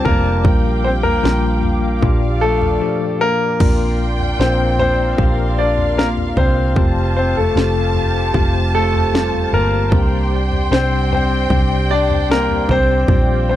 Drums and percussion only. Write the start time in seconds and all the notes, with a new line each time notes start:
0.05 kick, floor tom
0.44 kick, floor tom
1.04 floor tom
1.25 snare
1.63 floor tom
2.02 kick, floor tom
2.62 floor tom
3.60 kick, floor tom, crash
4.19 floor tom
4.41 snare
4.79 floor tom
5.18 kick, floor tom
5.78 floor tom
5.99 snare
6.17 floor tom
6.37 kick, floor tom
6.76 kick, floor tom
7.36 floor tom
7.57 snare
7.95 floor tom
8.34 kick, floor tom
8.94 floor tom
9.15 snare
9.33 floor tom
9.53 floor tom
9.92 kick, floor tom
10.51 floor tom
10.73 snare
11.11 floor tom
11.50 kick, floor tom
12.10 floor tom
12.31 snare
12.49 floor tom
12.69 kick, floor tom
13.08 kick, floor tom